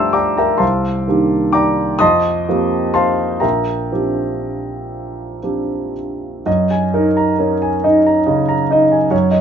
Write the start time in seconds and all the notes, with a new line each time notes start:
Already playing: F3 A3 D4 G4 C5 D5 E5 F5 G5 A5 A#5 C6 D6 E6
0.13 D5 G5 A#5 D6
0.37 A#4 E5 G5 A#5
0.58 C2 C5 F5 A5 C6
1.07 D#3 A#3 D4 G4
1.53 D5 G5 A#5 D6
1.99 F2 D#5 A5 C6 D#6
2.49 F3 A#3 C4 G4
2.94 C5 F5 A5 C6
3.40 A#1 A#4 E5 G5 A#5
3.92 F3 C4 D4 G4
5.43 F3 C4 D4 G4
6.46 F#2 D#5
6.71 G#5
6.94 D#4 A#4
7.17 A#5
7.39 C#4 A#4
7.62 G#5
7.84 D#4 D#5
8.07 A#5
8.26 C#3 D#5
8.49 A#5
8.71 D#4 D#5
8.92 G#5
9.11 F#2 C#5
9.31 D#5